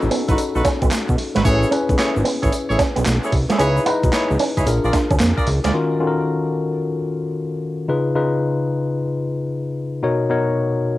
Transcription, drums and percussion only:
0.02 shaker soft
0.11 open hi-hat medium
0.11 tambourine medium
0.28 kick medium
0.28 closed hi-hat medium
0.28 shaker medium
0.38 closed hi-hat medium
0.38 tambourine medium
0.38 shaker medium
0.55 shaker soft
0.65 kick loud
0.65 snare medium
0.65 closed hi-hat medium
0.65 tambourine medium
0.65 shaker medium
0.82 kick loud
0.82 closed hi-hat medium
0.82 shaker medium
0.91 snare loud
0.91 clap medium
0.91 closed hi-hat medium
0.91 tambourine loud
0.91 shaker medium
1.09 kick medium
1.09 shaker soft
1.18 open hi-hat medium
1.18 tambourine medium
1.35 snare medium
1.35 closed hi-hat medium
1.35 shaker soft
1.45 kick loud
1.45 closed hi-hat medium
1.45 shaker medium
1.63 shaker medium
1.72 closed hi-hat medium
1.72 tambourine medium
1.89 kick loud
1.89 closed hi-hat medium
1.89 shaker medium
1.99 snare loud
1.99 clap medium
1.99 closed hi-hat medium
1.99 tambourine medium
1.99 shaker medium
2.17 shaker soft
2.25 open hi-hat medium
2.25 tambourine medium
2.43 kick loud
2.43 closed hi-hat medium
2.43 shaker medium
2.52 closed hi-hat medium
2.52 tambourine medium
2.52 shaker medium
2.71 shaker soft
2.79 kick medium
2.79 snare medium
2.79 closed hi-hat medium
2.79 tambourine medium
2.79 shaker medium
2.96 closed hi-hat soft
2.96 shaker medium
3.06 snare loud
3.06 clap loud
3.06 closed hi-hat medium
3.06 tambourine loud
3.06 shaker medium
3.24 shaker medium
3.32 kick loud
3.32 open hi-hat medium
3.32 tambourine medium
3.50 snare medium
3.50 closed hi-hat medium
3.50 shaker soft
3.59 closed hi-hat medium
3.59 shaker medium
3.77 shaker medium
3.86 closed hi-hat medium
3.86 tambourine medium
4.03 kick loud
4.03 closed hi-hat medium
4.03 shaker medium
4.13 snare loud
4.13 clap loud
4.13 closed hi-hat medium
4.13 tambourine medium
4.13 shaker medium
4.31 shaker soft
4.39 open hi-hat medium
4.39 tambourine medium
4.57 kick medium
4.57 closed hi-hat medium
4.57 shaker medium
4.67 closed hi-hat medium
4.67 tambourine medium
4.67 shaker medium
4.84 shaker soft
4.93 kick loud
4.93 snare medium
4.93 closed hi-hat medium
4.93 tambourine medium
4.93 shaker medium
5.11 kick loud
5.11 closed hi-hat soft
5.11 shaker medium
5.20 snare loud
5.20 clap loud
5.20 closed hi-hat medium
5.20 tambourine loud
5.20 shaker medium
5.38 kick medium
5.38 shaker medium
5.47 open hi-hat medium
5.47 tambourine medium
5.64 snare medium
5.64 closed hi-hat medium
5.64 shaker soft

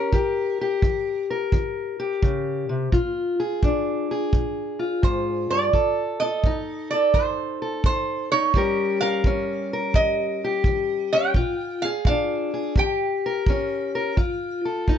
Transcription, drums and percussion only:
0.13 kick medium
0.82 kick medium
1.52 kick medium
2.23 kick medium
2.92 kick medium
3.63 kick medium
4.33 kick medium
5.03 kick medium
5.73 kick medium
6.44 kick medium
7.14 kick medium
7.84 kick medium
8.54 kick medium
9.24 kick medium
9.94 kick medium
10.64 kick medium
11.34 kick medium
12.05 kick medium
12.76 kick medium
13.46 kick medium
14.17 kick medium
14.88 kick medium

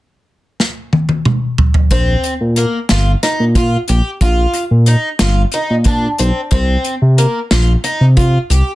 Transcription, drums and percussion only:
0.60 snare medium
0.93 high tom medium
1.09 high tom medium
1.25 mid tom medium
1.58 floor tom medium
1.74 floor tom medium
1.91 kick medium
1.91 closed hi-hat medium
2.24 closed hi-hat medium
2.56 closed hi-hat medium
2.89 snare medium
2.89 closed hi-hat medium
3.23 snare soft
3.23 closed hi-hat medium
3.55 kick medium
3.55 closed hi-hat medium
3.88 closed hi-hat medium
4.21 kick medium
4.21 closed hi-hat medium
4.54 closed hi-hat medium
4.86 closed hi-hat medium
5.19 snare loud
5.19 closed hi-hat medium
5.52 closed hi-hat soft
5.84 kick medium
5.84 closed hi-hat medium
6.18 closed hi-hat medium
6.51 kick medium
6.51 closed hi-hat medium
6.84 closed hi-hat soft
7.18 closed hi-hat medium
7.51 snare medium
7.51 closed hi-hat medium
7.84 closed hi-hat medium
8.17 kick medium
8.17 closed hi-hat medium
8.51 closed hi-hat medium

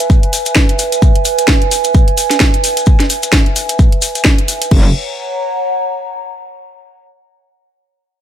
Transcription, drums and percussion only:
0.00 closed hi-hat medium
0.10 kick loud
0.10 shekere soft
0.23 closed hi-hat soft
0.33 open hi-hat medium
0.33 shekere medium
0.46 closed hi-hat medium
0.46 shekere soft
0.55 kick loud
0.55 snare loud
0.55 shekere soft
0.69 closed hi-hat soft
0.79 open hi-hat loud
0.79 shekere medium
0.92 closed hi-hat medium
0.92 shekere soft
1.02 kick loud
1.02 shekere soft
1.16 closed hi-hat medium
1.25 open hi-hat loud
1.25 shekere medium
1.38 closed hi-hat medium
1.38 shekere soft
1.47 kick loud
1.47 snare loud
1.47 shekere soft
1.62 closed hi-hat soft
1.71 open hi-hat loud
1.71 shekere medium
1.84 closed hi-hat medium
1.84 shekere medium
1.94 kick loud
1.94 shekere soft
2.08 closed hi-hat soft
2.18 open hi-hat loud
2.18 shekere medium
2.30 snare soft
2.30 closed hi-hat medium
2.30 shekere soft
2.40 kick loud
2.40 snare loud
2.40 shekere soft
2.54 closed hi-hat medium
2.64 open hi-hat loud
2.64 shekere medium
2.77 closed hi-hat medium
2.77 shekere soft
2.86 kick loud
2.86 shekere soft
3.00 snare soft
3.00 closed hi-hat medium
3.10 open hi-hat loud
3.10 shekere medium
3.23 closed hi-hat medium
3.23 shekere medium
3.33 kick loud
3.33 snare loud
3.33 open hi-hat medium
3.33 shekere soft
3.46 closed hi-hat soft
3.56 open hi-hat loud
3.56 shekere medium
3.69 closed hi-hat medium
3.69 shekere soft
3.79 kick loud
3.79 shekere soft
3.92 closed hi-hat soft
4.02 open hi-hat loud
4.02 shekere medium
4.15 closed hi-hat medium
4.15 shekere soft
4.25 kick loud
4.25 snare loud
4.25 shekere soft
4.38 closed hi-hat medium
4.48 open hi-hat loud
4.48 shekere medium
4.62 closed hi-hat medium
4.62 shekere soft
4.71 kick loud
4.71 crash medium

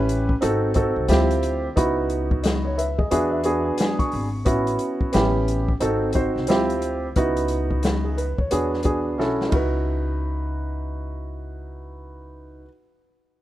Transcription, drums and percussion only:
0.09 closed hi-hat medium
0.29 kick medium
0.42 closed hi-hat medium
0.74 kick medium
0.74 closed hi-hat medium
1.08 snare loud
1.08 closed hi-hat medium
1.31 closed hi-hat soft
1.43 closed hi-hat medium
1.77 kick loud
1.77 closed hi-hat medium
2.10 closed hi-hat medium
2.31 kick medium
2.44 snare loud
2.44 closed hi-hat medium
2.79 closed hi-hat medium
2.99 kick medium
3.11 closed hi-hat medium
3.44 closed hi-hat medium
3.78 snare medium
3.78 closed hi-hat medium
3.99 kick medium
3.99 closed hi-hat soft
4.12 open hi-hat soft
4.46 kick medium
4.46 closed hi-hat medium
4.67 closed hi-hat soft
4.79 closed hi-hat medium
5.01 kick medium
5.13 snare medium
5.13 closed hi-hat medium
5.48 closed hi-hat medium
5.68 kick medium
5.81 closed hi-hat medium
6.13 kick medium
6.13 closed hi-hat medium
6.37 snare soft
6.47 snare loud
6.47 closed hi-hat medium
6.70 closed hi-hat soft
6.82 closed hi-hat medium
7.16 kick medium
7.16 closed hi-hat medium
7.37 closed hi-hat soft
7.48 closed hi-hat medium
7.71 kick medium
7.83 snare medium
7.83 closed hi-hat medium
8.18 closed hi-hat medium
8.38 kick medium
8.51 closed hi-hat medium
8.74 snare soft
8.83 kick medium
8.83 closed hi-hat medium
9.20 snare soft
9.41 snare medium
9.52 kick medium
9.52 ride medium

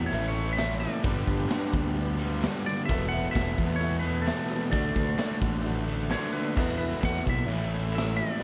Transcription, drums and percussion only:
0.02 closed hi-hat medium
0.13 closed hi-hat loud
0.24 closed hi-hat medium
0.35 closed hi-hat medium
0.46 closed hi-hat soft
0.58 snare loud
0.58 clap loud
0.58 closed hi-hat loud
0.81 snare soft
0.81 closed hi-hat medium
1.03 kick loud
1.03 closed hi-hat loud
1.16 closed hi-hat soft
1.27 kick medium
1.27 closed hi-hat medium
1.39 closed hi-hat soft
1.49 snare loud
1.49 clap loud
1.49 closed hi-hat loud
1.63 closed hi-hat soft
1.74 kick medium
1.74 closed hi-hat medium
1.85 closed hi-hat soft
1.97 closed hi-hat medium
2.21 closed hi-hat medium
2.33 closed hi-hat soft
2.41 snare loud
2.41 clap medium
2.41 closed hi-hat loud
2.54 closed hi-hat soft
2.67 snare soft
2.67 closed hi-hat medium
2.78 closed hi-hat soft
2.89 kick loud
2.89 closed hi-hat loud
3.02 closed hi-hat soft
3.13 closed hi-hat medium
3.25 closed hi-hat medium
3.34 kick medium
3.34 snare loud
3.34 clap loud
3.34 closed hi-hat loud
3.48 closed hi-hat soft
3.58 kick medium
3.58 closed hi-hat medium
3.70 closed hi-hat medium
3.80 closed hi-hat loud
3.93 closed hi-hat medium
4.04 closed hi-hat medium
4.16 closed hi-hat soft
4.27 snare loud
4.27 clap medium
4.27 closed hi-hat loud
4.50 snare soft
4.50 closed hi-hat medium
4.72 kick loud
4.72 closed hi-hat loud
4.84 closed hi-hat soft
4.95 kick medium
4.95 clap medium
4.95 closed hi-hat medium
5.08 closed hi-hat soft
5.18 snare loud
5.18 clap loud
5.18 closed hi-hat loud
5.31 closed hi-hat soft
5.42 kick medium
5.42 closed hi-hat medium
5.53 closed hi-hat soft
5.63 closed hi-hat loud
5.87 closed hi-hat medium
5.99 closed hi-hat soft
6.10 snare loud
6.10 clap medium
6.10 closed hi-hat medium
6.22 closed hi-hat soft
6.34 snare soft
6.34 closed hi-hat medium
6.47 closed hi-hat soft
6.57 kick loud
6.57 crash loud
6.69 closed hi-hat soft
6.79 closed hi-hat medium
6.92 closed hi-hat soft
7.02 kick medium
7.02 snare loud
7.02 clap medium
7.02 closed hi-hat loud
7.15 closed hi-hat soft
7.27 kick medium
7.27 closed hi-hat medium
7.39 closed hi-hat soft
7.51 closed hi-hat loud
7.63 closed hi-hat medium
7.74 closed hi-hat medium
7.87 closed hi-hat soft
7.93 clap medium
7.98 snare loud
7.98 closed hi-hat loud
8.21 closed hi-hat medium

